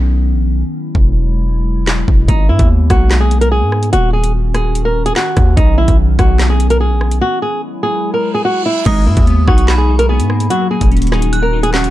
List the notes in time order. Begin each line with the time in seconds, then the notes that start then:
Already playing: B1 D#3 B3 C#4
0.33 A#1
0.49 B1
0.64 F#3 G#3 E4
0.95 E1, kick
1.87 snare, clap
2.08 E1, kick
2.28 G#1 A#3 B3 D#4, kick, closed hi-hat
2.49 G#2 E4
2.59 D#2, kick, closed hi-hat
2.90 B1 F#4, kick, cross-stick, closed hi-hat
3.11 snare, clap, closed hi-hat
3.21 G#4
3.31 closed hi-hat
3.41 A#4, closed hi-hat
3.52 G#4
3.62 G#2
3.72 cross-stick
3.83 closed hi-hat
3.93 D#1 D#3 C#4 F#4, closed hi-hat
4.13 G#4
4.24 closed hi-hat
4.54 G#4, cross-stick, closed hi-hat
4.75 closed hi-hat
4.85 A#4
5.06 G#4, closed hi-hat
5.16 F#4, snare, clap
5.37 D#2, kick, cross-stick, closed hi-hat
5.57 B1 B3 D#4, kick, closed hi-hat
5.78 E4
5.88 B1, kick, closed hi-hat
6.19 B1 F#4, kick, cross-stick, closed hi-hat
6.39 snare, clap, closed hi-hat
6.50 G#4
6.60 closed hi-hat
6.70 A#4, closed hi-hat
6.80 G#4
6.91 A#1
7.01 cross-stick
7.06 B1
7.11 closed hi-hat
7.21 F#3 G#3 E4 F#4
7.42 G#4
7.83 G#4
8.04 reverse cymbal
8.14 A#4
8.34 G#4
8.45 F#4
8.66 E4
8.86 G#1 B2 G#3 D#4 D#6, kick, closed hi-hat, crash
9.07 G#2 A#3 E4
9.17 D#2, kick, closed hi-hat
9.27 B3, closed hi-hat
9.47 B1 D#4 F#4 C#6, kick, cross-stick
9.58 closed hi-hat
9.68 G#4 B5, snare, clap
9.78 G#4
9.88 D#4
9.99 A#4, closed hi-hat
10.09 B3 G#4
10.20 G#2, closed hi-hat
10.30 A#3, cross-stick
10.40 closed hi-hat
10.50 D#3 F#3 C#4 F#4, closed hi-hat
10.71 A#3 G#4
10.81 D#1, kick, closed hi-hat
10.92 C#4, closed hi-hat
10.97 closed hi-hat
11.02 closed hi-hat
11.07 closed hi-hat
11.12 D#4 G#4, cross-stick, snare
11.22 closed hi-hat
11.33 F#4 F#6, closed hi-hat
11.42 A#4
11.53 D#4
11.63 G#4, closed hi-hat
11.73 C#4 F#4, snare, clap
11.84 closed hi-hat